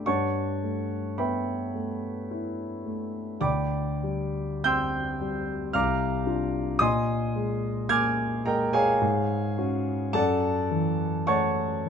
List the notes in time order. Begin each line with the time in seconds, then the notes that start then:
0.06 G2 C#5 F#5 A5 C#6
0.63 A3
1.18 B3 B4 E5 G5 B5
1.75 A3
2.31 E4
2.85 A3
3.41 D2 D5 G5 B5 D6
4.03 G3
4.64 C4 G5 C6 E6 G6
5.21 G3
5.73 C2 F5 A#5 D6 F6
6.26 D4 F4
6.79 A#2 D#5 G#5 C6 D#6
7.36 G#3
7.89 A#3 G#5 D6 F6 G#6
8.46 G#3 A#4 D#5 G5 A#5
8.73 G#4 C#5 F5 G#5
9.01 G#2
9.58 C#4 F#4
10.13 F#2 A4 D5 F#5 A5
10.71 E3
11.27 A3 C#5 F#5 A5 C#6